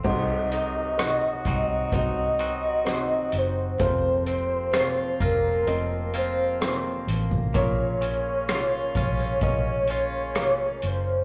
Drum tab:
CC |x---------------|----------------|----------------|
HH |--x-x-x-x-x-x-x-|x-x-x-x-x-x-x-x-|x-x-x-x-x-x-x-x-|
SD |----r-------r---|----r-------r---|----r--r----r---|
BD |o-----o-o-------|o-----o--------o|o-----o-o-------|